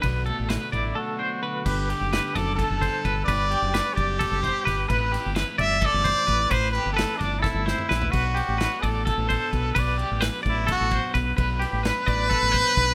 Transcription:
<<
  \new Staff \with { instrumentName = "Clean electric guitar" } { \time 7/8 \key g \major \tempo 4 = 130 b'8 a'8 b'8 d''8 a'8 c''8 b'8 | b'8 g'8 b'8 d''8 a'8 c''8 b'8 | b'8 g'8 b'8 d''8 a'8 c''8 b'8 | b'8 g'8 b'8 d''8 a'8 c''8 b'8 |
b'8 g'8 b'8 d''8 a'8 c''8 b'8 | b'8 g'8 b'8 d''8 a'8 c''8 b'8 | b'8 g'8 b'8 d''8 a'8 c''8 b'8 | b'8 g'8 b'8 d''8 a'8 c''8 b'8 | }
  \new Staff \with { instrumentName = "Trumpet" } { \time 7/8 \key g \major r4. e'8 fis'4. | g'4. a'8 a'4. | d''4. g'2 | b'4 r8 e''8 d''4. |
c''8 b'8 a'8 d'8 e'4. | fis'4. a'8 a'4. | d''4 r8 e'8 fis'4 r8 | b'2.~ b'8 | }
  \new Staff \with { instrumentName = "Clean electric guitar" } { \time 7/8 \key g \major << { r8 a8 e'16 fis'16 d'8 a8 d'4 | r2. r8 | r2. r8 | r2. r8 |
r2. r8 | r2. r8 | r2. r8 | r2. r8 | } \\ { <b, d>2. d8~ | d2.~ d8 | r2. r8 | r2. r8 |
r2. r8 | r2. r8 | r2. r8 | r2. r8 | } >> }
  \new Staff \with { instrumentName = "Overdriven electric guitar" } { \time 7/8 \key g \major <b, fis b d'>2.~ <b, fis b d'>8 | <g, d g b d' g'>2.~ <g, d g b d' g'>8 | <g, d g b d' g'>2.~ <g, d g b d' g'>8 | <a, e a c' e'>2.~ <a, e a c' e'>8 |
<a, e a c' e'>2.~ <a, e a c' e'>8 | <b, fis b d'>2.~ <b, fis b d'>8 | <b, fis b d'>2.~ <b, fis b d'>8 | <b, fis b d'>2.~ <b, fis b d'>8 | }
  \new Staff \with { instrumentName = "Fingered electric bass" } { \clef bass \time 7/8 \key g \major b,,8. a,,8 r16 a,,8 r4. | g,,8. fis,,8 r16 fis,,8. fis,,8 r16 g,,8 | g,,8. fis,,8 r16 fis,,8. fis,,8 r16 g,,8 | a,,8. g,,8 r16 g,,8. g,,8 r16 a,,8 |
a,,8. g,,8 r16 g,,8. g,,8 r16 ais,,8 | b,,8. a,,8 r16 a,,8. a,,8 r16 b,,8 | b,,8. a,,8 r16 a,,8. a,,8 r16 b,,8 | b,,8. a,,8 r16 a,,8. a,,8 r16 b,,8 | }
  \new DrumStaff \with { instrumentName = "Drums" } \drummode { \time 7/8 <bd cymr>8 cymr8 <cymr sn>8 <bd cymr>8 r4. | <cymc bd>8 cymr8 <cymr sn>8 <bd cymr sn>8 <bd cymr sn>8 <bd cymr>8 <bd cymr>8 | <bd cymr>8 cymr8 <cymr sn>8 <bd cymr>8 <bd cymr>8 <bd cymr sn>8 <bd cymr sn>8 | <bd cymr>8 <cymr sn>8 <cymr sn>8 <bd cymr>8 <bd cymr>8 <bd cymr sn>8 <bd cymr>8 |
<bd cymr>8 cymr8 <cymr sn>8 <bd cymr sn>8 <bd sn>8 sn16 toml16 sn16 tomfh16 | <cymc bd>8 cymr8 <cymr sn>8 <bd cymr>8 <bd cymr sn>8 <bd cymr>8 <bd cymr>8 | <bd cymr>8 cymr8 <cymr sn>8 <bd cymr>8 <bd cymr>8 <bd cymr>8 <bd cymr sn>8 | <bd cymr>8 <cymr sn>8 <cymr sn>8 <bd cymr>8 <bd cymr>8 <bd cymr>8 <bd cymr sn>8 | }
>>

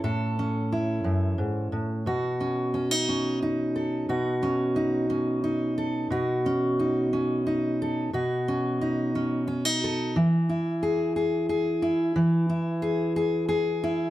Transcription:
\new Staff \with { instrumentName = "Steel-string acoustic guitar" } { \time 6/8 \key b \mixolydian \tempo 4. = 59 << { a'8 cis'8 e'2 | fis'8 cis'8 cis'16 dis'16 cis'8 dis'8 a'8 | fis'8 cis'8 dis'8 cis'8 dis'8 a'8 | fis'8 cis'8 dis'8 cis'8 dis'8 a'8 |
fis'8 cis'8 dis'8 cis'8 cis'16 dis'16 a'8 | r8 e'8 gis'8 gis'8 gis'8 e'8 | r8 e'8 gis'8 gis'8 gis'8 e'8 | } \\ { a,4. fis,8 gis,8 a,8 | b,2. | b,2. | b,2. |
b,2. | e2. | e2. | } >> }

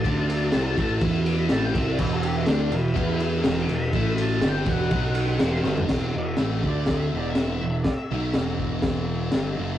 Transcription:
<<
  \new Staff \with { instrumentName = "Lead electric guitar" } { \time 4/4 \key e \minor \tempo 4 = 123 a''2 r8 d'''16 b''16 a''16 g''16 e''16 d''16 | b'16 a'16 g'16 e'16 d'8 e'4 r8. d'''16 b''8~ | b''8 a''8 g''8 fis''2 r8 | r8 e''4 d''8 e''8 d''16 e''4 d''16 |
e''4 r2. | }
  \new Staff \with { instrumentName = "Transistor combo organ" } { \time 4/4 \key e \minor <d' a' d''>8 <d' a' d''>8 <e' a' e''>8 <e' a' e''>8 <e' b' e''>8 <e' b' e''>8 <e' a' e''>8 <e' a' e''>8 | <g' b' e''>8 <g' b' fis''>8 <g' b' fis''>8 <g' b' e''>8 <g' b' fis''>8 <g' b' e''>8 <g' b' e''>8 <g' b' e''>8 | <e' a' e''>8 <e' a' d''>8 <g' b' e''>8 <g' b' d''>8 <fis' b' fis''>8 <fis' b' d''>8 <g' b' e''>8 <g' b' e''>8 | r1 |
r1 | }
  \new Staff \with { instrumentName = "Distorted electric guitar" } { \clef bass \time 4/4 \key e \minor <d a d'>4 <c g c'>8 <a, e a>8 <e b e'>4 <a, e a>8 <c g c'>8 | <e, b, e>4 <d a d'>8 <e, b,>8 <e b e'>4 <e, b, e>8 <e, b,>8 | <a, e a>4 <g, d g>8 <e, b, e>8 <b, fis b>4 <e, b, e>8 <g, d g>8 | <e, b, e>8 <e, b,>8 <a, e a>8 <d a d'>4 <e, b, e>4 <e, b,>8 |
r8 <b, fis b>8 <e, b, e>2 <g, d g>8 <fis, cis fis>8 | }
  \new Staff \with { instrumentName = "Picked electric bass" } { \clef bass \time 4/4 \key e \minor d,4 c,8 a,,8 e,4 a,,8 c,8 | e,,4 d,8 e,,8 e,4 e,,8 e,,8 | a,,4 g,,8 e,,8 b,,4 e,,8 g,,8 | e,,8 e,,8 a,,8 d,4 e,,4 e,,8 |
r8 b,,8 e,,2 g,,8 fis,,8 | }
  \new DrumStaff \with { instrumentName = "Drums" } \drummode { \time 4/4 <bd cymr>8 cymr8 <cymr sn>8 <bd cymr>8 <bd cymr>8 cymr8 <cymr sn>8 <bd cymr>8 | <cymc bd>8 cymr8 <cymr sn>8 cymr8 <bd cymr>8 cymr8 <cymr sn>8 cymr8 | <bd cymr>8 cymr8 <cymr sn>8 <bd cymr>8 <bd cymr>8 cymr8 <cymr sn>8 sn16 tomfh16 | <cymc bd sn>4 <cymc sn>8 bd8 <cymc bd sn>4 <cymc sn>4 |
<cymc bd sn>4 <cymc sn>8 bd8 <cymc bd sn>4 <cymc sn>4 | }
>>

